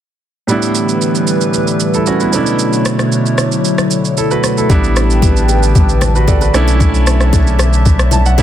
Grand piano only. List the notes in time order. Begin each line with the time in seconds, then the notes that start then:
0.47 A2 G3 B3 D4 E4
1.95 E4 A4
2.07 C#4 F#4
2.21 B3 E4
2.31 B2 F#3 A3 C#4 D4 E4
4.18 E4 A4
4.31 F#4 B4
4.58 E4 A4
4.69 G3 B3 D4 E4
6.16 F#4 B4
6.28 A4 D5
6.42 F#4 B4
6.54 A3 C#4 D4 E4
8.13 A5
8.26 F#5
8.38 A3 C#4 D4 E5